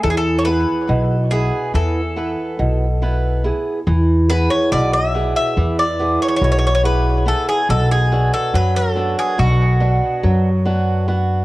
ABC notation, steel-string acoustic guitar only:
X:1
M:9/8
L:1/8
Q:3/8=47
K:Emix
V:1 name="Steel-string acoustic guitar"
E, [B,EG] B,, [B,EB] E, [B,EB] B,, [B,EB] [B,EG] | E, [B,EG] B,, [B,EG] E, [B,EG] B,, [B,EG] [B,EG] | B,, [B,DF] F, [B,DF] B,, [B,DF] F, [B,DF] [B,DF] |]